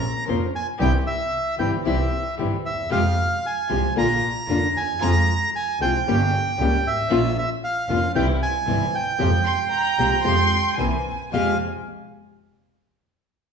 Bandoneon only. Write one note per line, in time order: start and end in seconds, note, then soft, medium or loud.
0.00 0.24 A#5 loud
0.56 0.67 G#5 loud
0.81 0.93 G5 loud
1.07 1.55 E5 loud
1.59 1.71 G5 medium
1.86 2.35 E5 medium
2.66 2.90 E5 medium
2.92 3.46 F5 medium
3.46 3.94 G#5 medium
3.98 4.79 A#5 loud
4.77 5.03 G#5 loud
5.02 5.50 A#5 loud
5.56 5.79 G#5 loud
5.82 6.88 G5 loud
6.87 7.37 E5 medium
7.38 7.50 E5 medium
7.64 8.12 F5 medium
8.16 8.27 G5 medium
8.43 8.96 G#5 loud
8.95 10.75 G5 loud
11.34 11.58 F5 medium